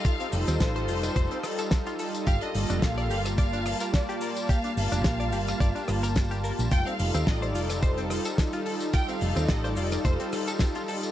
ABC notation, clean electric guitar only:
X:1
M:4/4
L:1/16
Q:"Swing 16ths" 1/4=108
K:Fmix
V:1 name="Clean electric guitar"
F C z C z c F z c C z A z F A z | G D z D z d G z d D z B z G B z | G D z D z d G z d D z B z G B z | F C z C z c F z c C z A z F A z |
F C z C z c F z c C z A z F A z |]